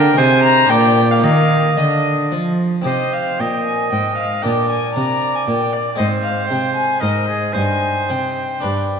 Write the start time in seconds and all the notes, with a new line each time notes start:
Already playing: D3 A#3 F4 A#4 G5
0.13 C3 C4 D#4 G#4 G#5
0.18 C3 C5
0.43 A#5
0.66 D4 F4 G#4 G5
0.70 A#2 D5
1.11 F5
1.19 A#3 D#4 G4 F5
1.23 D#3 D#5
1.77 D3 D#5
2.32 F3
2.82 C3 C4 D#4 G4 D#5
2.86 C3 C5
3.13 F5
3.39 A#2 D#5 G5
3.66 G#5
3.91 G#2 G5
4.17 F5
4.42 A#2 D4 A#4 D5 G5
4.69 G#5
4.95 C3 A#5
5.35 G#5
5.48 A#2 G5
5.73 D5
5.95 G#3 C4 C5 D#5
5.99 G#2
6.23 F5
6.49 C3 G5
6.75 G#5
7.01 G#2 D#4 A#4 C5 D#5
7.28 G#4
7.53 G2 D#4 C5 G#5
8.09 C3 G5
8.60 G2 D4 B4